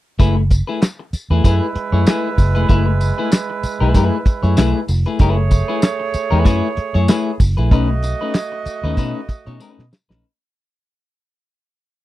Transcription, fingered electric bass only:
0.20 F#1
1.13 muted fingered electric bass stroke
1.30 E2
1.44 F#2
1.75 muted fingered electric bass stroke
1.92 F#2
2.38 F#1
2.56 F1
2.69 F#1
3.63 muted fingered electric bass stroke
3.81 B1
3.94 F#2
4.26 muted fingered electric bass stroke
4.43 F#2
4.57 B1
4.89 F1
5.20 F#1
6.14 muted fingered electric bass stroke
6.32 E2
6.45 F#2
6.78 muted fingered electric bass stroke
6.95 F#2
7.40 F#1
7.58 A#1
7.71 B1
8.66 muted fingered electric bass stroke
8.84 D#2
8.97 B2
9.29 muted fingered electric bass stroke
9.47 B2
9.79 B2
10.10 A#1

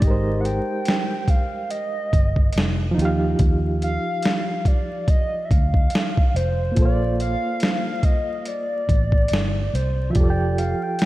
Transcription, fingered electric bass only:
0.02 G#1
2.13 G1
2.56 F1
2.98 D#2
3.40 D#2
5.51 D2
6.34 F1
6.77 A#1
8.89 A1
9.32 G1
9.74 C2
10.16 F1

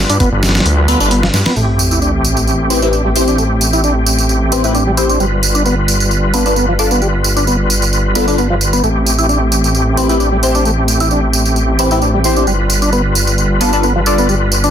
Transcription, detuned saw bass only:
0.09 G2
0.32 G1
0.65 D2
1.00 G1
1.34 G2
1.56 A1
5.20 G1
8.84 A1
12.47 G1

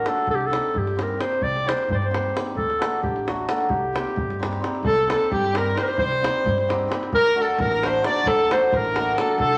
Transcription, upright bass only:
0.27 C2
0.74 G2
1.41 C2
1.88 G2
2.55 D2
3.03 A1
3.69 C2
4.16 G2
4.83 C2
5.32 G2
5.99 C2
6.44 G2
7.12 D2
7.58 A1
8.24 D2
8.72 A1
9.38 C2

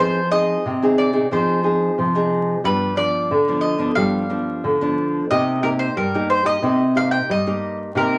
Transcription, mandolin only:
0.00 C5
0.31 D#5
0.98 D5
1.33 C5
2.65 B4
2.97 D5
3.61 D#5
3.95 F5
5.31 D#5
5.63 A#4
5.79 C5
5.97 A#4
6.30 C5
6.46 D#5
6.97 F5
7.11 G5
7.31 D#5
7.97 A#4

